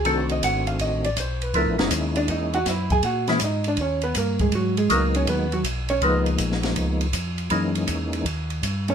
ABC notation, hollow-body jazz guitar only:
X:1
M:4/4
L:1/8
Q:"Swing" 1/4=161
K:F#mix
V:1 name="Hollow-body jazz guitar"
(3=A =c _e _g ^e _e =d c B | A D z [=D=d] [^D^d] [Ff] [Ee] [Gg] | [Ff] [Ee] [Dd] [=D=d] [Cc] [B,B] [A,A] [G,G] | [F,F] [G,G] [A,A] [Cc] [B,B] [F,F] z [Cc] |
[B,B] z6 z | z6 z [Cc] |]